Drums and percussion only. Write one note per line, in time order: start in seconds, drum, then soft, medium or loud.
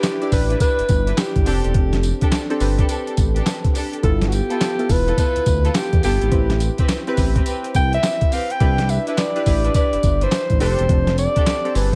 0.03 snare loud
0.03 clap medium
0.03 closed hi-hat medium
0.03 tambourine medium
0.22 closed hi-hat soft
0.32 kick medium
0.32 open hi-hat medium
0.32 tambourine medium
0.50 closed hi-hat medium
0.60 kick loud
0.60 closed hi-hat loud
0.60 tambourine medium
0.79 closed hi-hat medium
0.89 kick loud
0.89 closed hi-hat medium
0.89 tambourine medium
1.07 closed hi-hat medium
1.18 snare loud
1.18 clap loud
1.18 closed hi-hat medium
1.18 tambourine medium
1.36 kick loud
1.36 closed hi-hat medium
1.46 open hi-hat medium
1.46 tambourine medium
1.64 closed hi-hat medium
1.74 kick loud
1.74 closed hi-hat medium
1.93 snare medium
1.93 closed hi-hat soft
2.03 closed hi-hat medium
2.03 tambourine medium
2.21 kick medium
2.21 closed hi-hat medium
2.32 snare loud
2.32 clap medium
2.32 closed hi-hat medium
2.32 tambourine loud
2.50 closed hi-hat soft
2.60 open hi-hat medium
2.60 tambourine medium
2.78 kick medium
2.78 closed hi-hat medium
2.89 closed hi-hat loud
2.89 tambourine medium
3.07 closed hi-hat medium
3.17 kick loud
3.17 closed hi-hat medium
3.17 tambourine medium
3.36 closed hi-hat medium
3.46 snare loud
3.46 clap loud
3.46 closed hi-hat medium
3.46 tambourine loud
3.64 kick loud
3.64 closed hi-hat medium
3.75 open hi-hat medium
3.75 tambourine medium
3.93 closed hi-hat medium
4.03 kick loud
4.03 closed hi-hat medium
4.22 snare medium
4.22 closed hi-hat soft
4.32 closed hi-hat medium
4.32 tambourine medium
4.50 closed hi-hat medium
4.61 snare loud
4.61 clap medium
4.61 closed hi-hat medium
4.61 tambourine medium
4.79 closed hi-hat soft
4.89 kick medium
4.89 open hi-hat medium
4.89 tambourine medium
5.08 closed hi-hat medium
5.18 kick loud
5.18 closed hi-hat loud
5.18 tambourine medium
5.36 closed hi-hat medium
5.46 kick loud
5.46 closed hi-hat medium
5.46 tambourine medium
5.65 closed hi-hat medium
5.75 snare loud
5.75 clap medium
5.75 closed hi-hat medium
5.75 tambourine loud
5.93 kick medium
5.93 closed hi-hat medium
6.03 open hi-hat medium
6.03 tambourine medium
6.22 closed hi-hat medium
6.32 kick loud
6.32 closed hi-hat medium
6.50 snare medium
6.50 closed hi-hat soft
6.60 closed hi-hat medium
6.60 tambourine medium
6.78 kick medium
6.78 closed hi-hat medium
6.89 snare loud
6.89 clap medium
6.89 closed hi-hat medium
6.89 tambourine medium
7.07 closed hi-hat soft
7.17 kick medium
7.17 open hi-hat medium
7.17 tambourine medium
7.36 kick loud
7.36 closed hi-hat medium
7.46 closed hi-hat loud
7.46 tambourine medium
7.64 closed hi-hat medium
7.74 kick loud
7.74 closed hi-hat medium
7.74 tambourine medium
7.93 closed hi-hat medium
8.03 snare loud
8.03 clap medium
8.03 closed hi-hat medium
8.03 tambourine loud
8.21 kick loud
8.21 closed hi-hat medium
8.32 open hi-hat medium
8.32 tambourine medium
8.50 closed hi-hat medium
8.60 kick loud
8.60 closed hi-hat medium
8.78 snare medium
8.78 closed hi-hat soft
8.89 closed hi-hat medium
8.89 tambourine medium
9.07 closed hi-hat medium
9.18 snare loud
9.18 clap medium
9.18 closed hi-hat medium
9.18 tambourine medium
9.36 closed hi-hat soft
9.46 kick medium
9.46 open hi-hat medium
9.46 tambourine medium
9.64 closed hi-hat medium
9.74 kick loud
9.74 closed hi-hat loud
9.74 tambourine medium
9.93 closed hi-hat medium
10.03 kick loud
10.03 closed hi-hat medium
10.03 tambourine medium
10.21 closed hi-hat medium
10.32 snare loud
10.32 clap medium
10.32 closed hi-hat medium
10.32 tambourine loud
10.50 kick medium
10.50 closed hi-hat soft
10.60 open hi-hat medium
10.60 tambourine medium
10.79 closed hi-hat medium
10.89 kick loud
10.89 closed hi-hat medium
11.07 snare medium
11.07 closed hi-hat medium
11.18 closed hi-hat medium
11.18 tambourine medium
11.36 kick medium
11.36 closed hi-hat medium
11.46 snare loud
11.46 clap medium
11.46 closed hi-hat medium
11.46 tambourine loud
11.65 closed hi-hat soft
11.75 open hi-hat medium
11.75 tambourine medium